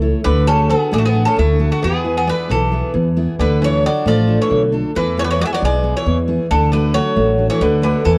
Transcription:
Already playing: C#2 A3
0.02 E4 A4 C#5
0.24 D2 D3 B4
0.47 C#3 D4 F#4 A4
0.69 B3 D4 F#4 G#4 A4
0.91 A1 D3 A3 G#4
0.98 A3 F#4
1.05 B3 G#4
1.14 D4 F#4 A4
1.25 C#3 A4
1.36 D2 D3 A3 E4
1.59 D4 F#4 A4
1.72 A3 F#4
1.82 E2 E3 B3 G#4
2.05 B3 E4 G#4
2.17 B3 G#4
2.27 D3 B3 E4 G#4 B4
2.49 B1 B2 E3 A4
2.71 B3 E4 G#4
2.94 E2 E3
3.17 B3 E4 G#4
3.39 D2 D3 B4
3.62 E3 D4 F4 A4 C#5
3.83 F#3 D4 F4 A4 D5
4.06 A1 F3 A3 D5
4.27 D4 F4 A4
4.41 E3 C#5
4.50 B1 D3
4.72 D4 F4 A4
4.95 E2 E3 B4
5.17 E3 B3 E4 G#4 C#5
5.24 D3 B4
5.31 E3 C#5
5.39 F#3 B3 E4 G#4 D5
5.46 G#3 E5
5.53 F#3 D5
5.62 B1 B2 G#3 D5
5.83 B3 E4 G#4
5.97 E3 C#5
6.06 E2 E3
6.28 B3 E4 G#4
6.51 D2 D3 A4
6.72 D3 A3 D4 F#4 B4
6.94 F#3 A3 D4 F#4 C#5
7.17 A1 A3
7.38 A3 D4 F#4
7.50 E3 C#5
7.61 D2 D3 B4
7.82 D3 A3 D4 F#4 B4
8.04 E2 E3 A4

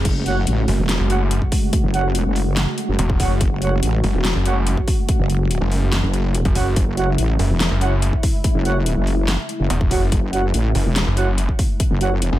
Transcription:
Already playing: C#3 G#3 A3
0.05 F#1 F#4, kick, closed hi-hat, crash
0.26 F#4 C#5 F#5, closed hi-hat
0.47 A1, closed hi-hat
0.68 F#1, open hi-hat
0.79 E1
0.89 snare, closed hi-hat
1.00 F#1
1.10 F#4 C#5 F#5, closed hi-hat
1.31 closed hi-hat
1.42 kick
1.52 kick, open hi-hat
1.73 kick, closed hi-hat
1.84 F#1
1.94 F#4 C#5 F#5, closed hi-hat
2.15 closed hi-hat
2.26 F#1
2.36 open hi-hat
2.57 snare, closed hi-hat
2.78 closed hi-hat
2.89 F#1
2.99 E1, closed hi-hat
3.10 kick
3.20 F#4 C#5 F#5, kick, open hi-hat
3.31 F#1
3.41 F#1, kick, closed hi-hat
3.62 F#4 C#5 F#5, closed hi-hat
3.83 A1, closed hi-hat
4.04 F#1, open hi-hat
4.14 E1
4.25 snare, closed hi-hat
4.35 F#1
4.46 F#4 C#5 F#5, closed hi-hat
4.67 closed hi-hat
4.77 kick
4.88 kick, open hi-hat
5.09 kick, closed hi-hat
5.19 F#1
5.30 closed hi-hat
5.51 closed hi-hat
5.61 F#1
5.72 open hi-hat
5.93 snare, closed hi-hat
6.03 F#1
6.14 closed hi-hat
6.35 closed hi-hat
6.45 F#1, kick, closed hi-hat
6.55 F#4 C#5 F#5, kick, open hi-hat
6.76 F#1 E4, kick, closed hi-hat
6.97 F#4 C#5 F#5, closed hi-hat
7.18 A1, closed hi-hat
7.39 F#1, open hi-hat
7.50 E1
7.60 snare, closed hi-hat
7.71 F#1
7.81 F#4 C#5 F#5, closed hi-hat
8.02 closed hi-hat
8.13 kick
8.23 kick, open hi-hat
8.44 kick, closed hi-hat
8.55 F#1
8.65 F#4 C#5 F#5, closed hi-hat
8.86 closed hi-hat
8.97 F#1
9.07 open hi-hat
9.28 snare, closed hi-hat
9.49 closed hi-hat
9.60 F#1
9.70 E1, closed hi-hat
9.81 kick
9.91 F#4 C#5 F#5, kick, open hi-hat
10.02 F#1
10.12 F#1, kick, closed hi-hat
10.33 F#4 C#5 F#5, closed hi-hat
10.54 A1, closed hi-hat
10.75 F#1, open hi-hat
10.86 E1
10.96 snare, closed hi-hat
11.07 F#1
11.17 F#4 C#5 F#5, closed hi-hat
11.38 closed hi-hat
11.49 kick
11.59 kick, open hi-hat
11.80 kick, closed hi-hat
11.91 F#1
12.01 F#4 C#5 F#5, closed hi-hat
12.22 closed hi-hat
12.33 F#1

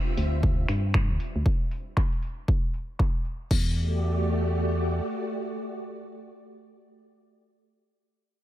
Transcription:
Already playing: G3 C4 F4 E5
0.17 D2, open hi-hat
0.43 kick
0.69 G2, finger snap, open hi-hat
0.94 finger snap, kick
1.10 D2
1.20 open hi-hat
1.36 D2
1.46 kick
1.71 open hi-hat
1.97 finger snap, kick
2.13 open hi-hat
2.23 open hi-hat
2.48 kick
2.74 open hi-hat
2.99 finger snap, kick
3.25 open hi-hat
3.51 E2 A3 F#4 G4 D5, kick, crash

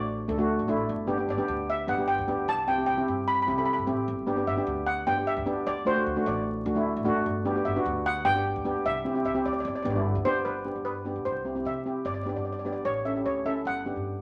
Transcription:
Already playing: A1 D5
0.28 D2 A3 D4 A4
0.38 A3 D4 F#4
0.59 A1
0.68 A1 A3 D4 E4
0.89 G1
1.07 B3 D4 G4
1.18 B3 D4 G4
1.29 G1 D5
1.37 B3 D4 G4
1.48 D2
1.70 E5
1.87 G1 B3 D4 G4 F#5
1.98 B3 D4 G4
2.08 G5
2.18 D2
2.27 D2 B3 D4 G4
2.48 C2 A5
2.67 C4 E4 G4 G5
2.78 C4 E4 G4
2.86 C2 G5
2.97 C4 E4 G4
3.08 G2
3.28 B5
3.35 B5
3.42 B5
3.47 C2 C4 E4 G4 B5
3.58 C4 E4 A4 B5
3.66 B5
3.73 B5
3.78 G2
3.87 A1 C4 E4 G4
4.08 G1
4.27 B3 D4 G4
4.36 B3 D4 G4
4.47 G1 E5
4.57 B3 D4 G4
4.67 D2
4.86 F#5
5.06 G1 B3 D4 G4 G5
5.16 B3 D4 G4
5.27 E5
5.37 D2
5.46 D2 B3 D4 G4
5.66 D2 D5
5.85 A3 D4 F#4 C5
5.95 A3 D4 F#4
6.06 D2
6.16 A3 D4 F#4
6.26 A1 D5
6.65 D2 A3 D4 F#4
6.75 A3 D4 E4
6.96 A1
7.05 G#1 A3 D4 F#4
7.26 G1
7.45 B3 D4 G4
7.55 B3 D4 G4
7.65 G1 E5
7.76 B3 D4 F#4
7.85 D2
8.06 F#5
8.25 G1 B3 D4 G4 G5
8.35 B3 D4 G4
8.56 D2
8.64 D2 B3 D4 G4
8.85 C2 E5
9.05 C4 E4 G4
9.14 C4 E4 G4
9.25 C2 E5
9.35 C4 E4 G4
9.45 D2 D5
9.53 D5
9.60 D5
9.65 G1 D5
9.75 D5
9.83 G1 B3 D4 G4 D5
9.90 D5
9.95 B3 D4 E4
10.15 D2
10.25 D2 B3 D4 G4 C5
10.45 G1 B4
10.65 B3 D4 G4
10.76 G2
10.85 B4
11.05 B3 D4 G4
11.16 B1
11.25 C2 C5
11.45 C4 E4 G4
11.55 C4 E4 G4
11.65 C3 E5
11.86 C4 E4 G4
12.05 G1 D5
12.14 D5
12.23 B3 D4 G4 D5
12.29 D5
12.36 G2 D5
12.45 D5
12.52 D5
12.59 D5
12.65 B3 D4 G4 D5
12.73 G1 D5
12.85 A1 C#5
13.05 C#4 E4 A4 E5
13.15 C#4 E4 G4
13.25 D2 C#5
13.45 C#4 E4 A4 E5
13.65 G1 F#5
13.85 B3 D4 G4
13.96 G2

